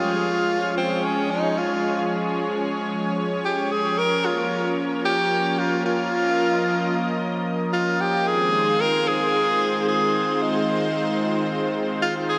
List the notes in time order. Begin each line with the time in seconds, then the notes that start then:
Already playing: F3 G#3 C#4 F4 G#4 C#5
0.78 C4
1.04 C#4
1.31 D#4
1.58 F4
3.45 G4
3.72 G#4
3.98 F3 A#3 A#4
4.26 F4
5.06 G4
5.59 F4
5.86 F4
6.13 D#5
7.73 F4
8.01 G4
8.27 D#3 G#3 C4 F4 G#4 C5
8.81 A#4
9.08 G#4
9.88 G#4
10.42 D#4
12.03 F4
12.29 G#4